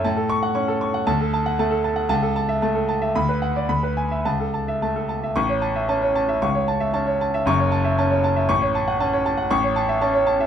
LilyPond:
<<
  \new Staff \with { instrumentName = "Grand piano" } { \time 2/4 \key a \major \tempo 4 = 115 << { r8 cis'''8 r4 | a''8 r4. | a''8 r4. | b''8 r8 b''8 r8 |
a''8 r4. | cis'''8 r4. | cis'''8 r4. | cis'''8 r4. |
cis'''8 r4. | cis'''8 r4. | } \\ { a''16 a'8 fis''16 cis'''16 a'16 cis'''16 fis''16 | r16 a'16 a''16 fis''16 a''16 a'16 a''16 fis''16 | r16 a'16 a''16 e''16 a''16 a'16 a''16 e''16 | r16 b'16 fis''16 d''16 r16 b'16 gis''16 e''16 |
r16 a'16 a''16 e''16 a''16 a'16 a''16 e''16 | r16 cis''16 a''16 e''16 a''16 cis''16 a''16 e''16 | r16 cis''16 a''16 e''16 a''16 cis''16 a''16 e''16 | r16 cis''16 a''16 e''16 a''16 cis''16 a''16 e''16 |
r16 cis''16 a''16 fis''16 a''16 cis''16 a''16 fis''16 | r16 cis''16 a''16 e''16 a''16 cis''16 a''16 e''16 | } >> }
  \new Staff \with { instrumentName = "Grand piano" } { \clef bass \time 2/4 \key a \major a,4 cis'8 r8 | d,4 a8 r8 | cis,4 a8 r8 | d,4 d,4 |
cis,4 a8 r8 | a,,4 cis'8 r8 | cis,4 cis'8 r8 | <fis,, fis,>4 cis'8 r8 |
a,,4 cis'8 r8 | a,,4 cis'8 r8 | }
>>